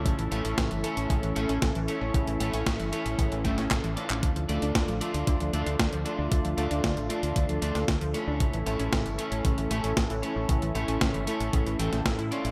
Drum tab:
HH |xxxxxxxxxxxxxxx-|xxxxxxxxxxxxxxx-|xxxxxxxxxxxxxxx-|xxxxxxxxxxxxxxx-|
CP |----------------|------------x--x|----------------|----------------|
SD |----o-------o---|----o------oo---|----o-------o---|----o------oo---|
BD |o---o---o---o---|o---o---o-o-o---|o---o---o---o---|o---o---o---o---|

HH |xxxxxxxxxxxxxxx-|xxxxxxxxxxxxxxxx|
CP |----------------|----------------|
SD |----o-------o---|----o------oo---|
BD |o---o---o---o---|o---o---o---o---|